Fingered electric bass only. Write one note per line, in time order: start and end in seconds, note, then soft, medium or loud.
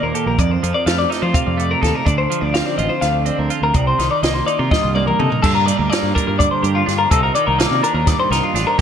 0.03 0.12 D#2 medium
0.26 0.35 A#1 medium
0.39 0.57 F2 medium
0.63 0.72 F2 loud
0.86 1.04 F2 medium
1.22 1.31 F3 medium
1.47 1.74 F2 medium
1.83 1.92 D#2 medium
2.07 2.25 D2 medium
2.42 2.60 D2 medium
2.78 2.88 A1 medium
3.02 3.29 D2 medium
3.39 3.48 D2 medium
3.62 3.71 D2 medium
3.75 3.93 C2 medium
3.99 4.08 C2 medium
4.23 4.41 C2 medium
4.59 4.68 C3 medium
4.84 5.11 C2 medium
5.20 5.28 C3 medium
5.44 5.71 G2 medium
5.79 5.88 D2 medium
6.03 6.12 G2 medium
6.28 6.46 G2 medium
6.63 6.81 G2 medium
6.88 7.05 G2 medium
7.12 7.29 C2 medium
7.48 7.65 C2 medium
7.71 7.80 C3 medium
7.94 8.13 D#2 medium
8.30 8.40 C2 loud
8.54 8.63 A1 medium